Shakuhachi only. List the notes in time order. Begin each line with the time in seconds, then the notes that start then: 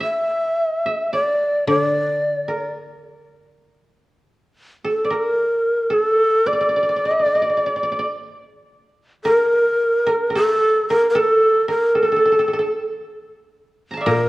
0.04 E5
1.13 D5
1.69 D5
4.89 A4
5.14 A#4
5.93 A4
6.47 D5
7.07 D#5
7.23 D5
7.41 D#5
7.57 D5
9.25 A#4
10.36 A4
10.89 A#4
11.10 A#4
11.17 A4 A#4
11.70 A#4
11.97 A4
14.08 A#4